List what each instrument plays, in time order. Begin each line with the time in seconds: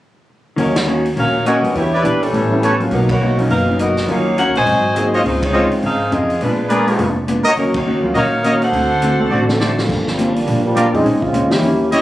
0.56 upright bass D#2, hollow-body jazz guitar D#3 A#3 C#4 F#4, saxophone section F#3 C#4 D#4 A#4, open hi-hat
0.76 saxophone section A#3 D#4 F#4 C#5, snare, ride
0.86 hollow-body jazz guitar D#3 A#3 C#4 F#4
1.05 open hi-hat
1.16 upright bass A#1, hollow-body jazz guitar D#3 A#3 C#4 F#4, saxophone section D#4 A#4 C#5 F5, open hi-hat
1.45 hollow-body jazz guitar D#3 A#3 C#4 F#4, saxophone section C#4 F#4 A#4 D#5, trumpet section D#4 F#4 A#4 C#5, closed hi-hat
1.62 grand piano G3 B3 D4 F#4, muted upright bass stroke, open hi-hat
1.74 upright bass E2, hollow-body jazz guitar E3 B3 D4 G4, saxophone section B3 E4 G4 C#5, open hi-hat
1.92 trumpet section E4 G4 B4 D5
2.03 upright bass A#1, hollow-body jazz guitar E3 B3 D4 G4, saxophone section G3 D4 E4 B4, closed hi-hat
2.23 saxophone section G3 C#4 E4 A4, open hi-hat
2.32 upright bass A1, hollow-body jazz guitar A2 G3 B3 C#4, open hi-hat
2.50 grand piano G3 B3 C#4 E4
2.62 hollow-body jazz guitar A2 G3 B3 C#4, trumpet section G4 A4 B4 C#5, closed hi-hat
2.79 grand piano F#3 A#3 C#4 F4, open hi-hat
2.91 upright bass B1, hollow-body jazz guitar B2 F#3 A#3 D#4, saxophone section F#3 B3 D#4 A#4, open hi-hat
3.09 saxophone section B3 F#4 A#4 C#5, kick, ride
3.20 hollow-body jazz guitar B2 F#3 A#3 D#4
3.37 grand piano F#3 A#3 C#4 D#4, open hi-hat
3.49 upright bass F#1, hollow-body jazz guitar B2 F#3 A#3 D#4, saxophone section D#4 A#4 B4 F5, open hi-hat
3.66 grand piano F#3 A#3 C#4 D#4
3.79 hollow-body jazz guitar B2 F#3 A#3 D#4, saxophone section B3 F#4 A#4 D#5, closed hi-hat
3.97 snare, open hi-hat
4.06 upright bass D#2, hollow-body jazz guitar D#3 A#3 C#4, grand piano F#3 A#3 C#4 F4, saxophone section A#3 D#4 F#4 C#5, open hi-hat
4.11 hollow-body jazz guitar F#4
4.37 hollow-body jazz guitar D#3 A#3 C#4 F#4, saxophone section D#4 A#4 C#5 F#5, closed hi-hat
4.47 upright bass C#2
4.55 upright bass A#1, saxophone section F#4 C5 D#5 G#5, open hi-hat
4.66 upright bass G#1, hollow-body jazz guitar G#2 F#3 C4 D#4, open hi-hat
4.94 hollow-body jazz guitar G#2 F#3 C4 D#4, grand piano A#3 C4 D#4 G#4, closed hi-hat
5.13 trumpet section F4 C5 C#5 D#5, open hi-hat
5.24 upright bass C#2, hollow-body jazz guitar C#3 F3 C4 D#4, saxophone section G#3 D#4 F4 C5, open hi-hat
5.42 saxophone section G#3 D#4 F4 C#5, kick, ride
5.52 hollow-body jazz guitar C#3 F3 C4 D#4, grand piano G#3 C4 D#4 F4, trumpet section F4 C5 C#5 D#5
5.71 muted upright bass stroke, open hi-hat
5.82 upright bass G#1, hollow-body jazz guitar C#3 F3 C4 D#4, saxophone section D#4 G#4 C5 F5, open hi-hat
6.11 upright bass F2, hollow-body jazz guitar C#3 F3 C4 D#4, saxophone section C4 F4 G#4 D#5, closed hi-hat
6.30 open hi-hat
6.41 upright bass A#1, hollow-body jazz guitar A#2 G#3 B3 D4, saxophone section G#3 D4 F4 B4, open hi-hat
6.69 hollow-body jazz guitar A#2 G#3 B3 D4, saxophone section G#3 D4 F4 A#4, trumpet section G#4 A#4 B4 D5, closed hi-hat
6.87 grand piano G#3 B3 D4 F4, open hi-hat
6.98 upright bass F1, hollow-body jazz guitar A#2 G#3 B3 D4, open hi-hat
7.28 hollow-body jazz guitar A#2 G#3 B3 D4, closed hi-hat
7.44 trumpet section F#4 A#4 C#5 D#5, muted upright bass stroke
7.56 upright bass D#2, hollow-body jazz guitar D#3 A#3 C#4 F#4, saxophone section F#3 C#4 D#4 A#4, open hi-hat
7.74 saxophone section A#3 D#4 F#4 C#5, kick, ride
7.85 hollow-body jazz guitar D#3 A#3 C#4 F#4
8.02 upright bass D2, grand piano F#3 A#3 C#4 F4
8.14 upright bass A#2, hollow-body jazz guitar D#3 A#3 C#4 F#4, saxophone section D#4 A#4 C#5 F5, trumpet section F#4 A#4 C#5 D#5, open hi-hat
8.43 hollow-body jazz guitar D#3 A#3 C#4 F#4, trumpet section F#4 A#4 C#5 D#5, closed hi-hat
8.62 saxophone section D4 A4 C5 F#5, open hi-hat
8.72 upright bass D2, hollow-body jazz guitar D3 A3 C4 F#4, open hi-hat
9.02 hollow-body jazz guitar D3 A3 C4 F#4, closed hi-hat
9.19 upright bass C#2, grand piano A3 C4 D4 F#4
9.30 upright bass A1, hollow-body jazz guitar D3 A3 C4 F#4, trumpet section F#4 A4 C5 D5
9.48 trombone section D3 F#3 A3 C4, grand piano A3 C4 D4 A4, snare
9.60 hollow-body jazz guitar D3 A3 C4 F#4, trombone section F#3 A3 C4 D4, trumpet section F#4 A4 C5 D5, snare
9.77 trombone section D3 F3 G3 A#3, snare
9.88 upright bass G1, hollow-body jazz guitar G2 F3 A#3 D4, kick, crash
10.06 trombone section F3 G3 A#3 C4, snare
10.18 hollow-body jazz guitar G2 F3 A#3 D4, closed hi-hat
10.34 trombone section F3 G3 A#3 D4, open hi-hat
10.46 upright bass A#1, hollow-body jazz guitar G2 F3 A#3 D4, open hi-hat
10.65 trombone section F3 G3 A#3 D4
10.75 hollow-body jazz guitar G2 F3 A#3 D4, trumpet section F4 G4 A#4 D5, closed hi-hat
10.92 upright bass F2, grand piano F3 C4 C#4 D#4 G#4, trombone section G#3 C4 C#4 D#4, open hi-hat
11.03 upright bass A#1, hollow-body jazz guitar A#2 G#3 C#4 D#4, open hi-hat
11.22 trombone section G#3 C4 C#4 F4, kick
11.33 upright bass D2, hollow-body jazz guitar A#2 G#3 C#4 D#4, closed hi-hat
11.50 grand piano E3 A#3 C#4 D#4 G4, trombone section A#3 C#4 E4 G4, snare, open hi-hat
11.62 upright bass D#2, hollow-body jazz guitar D#3 G3 C#4 E4, open hi-hat
11.90 hollow-body jazz guitar D#3 G3 C#4 E4, trumpet section E4 G4 C#5 D#5, closed hi-hat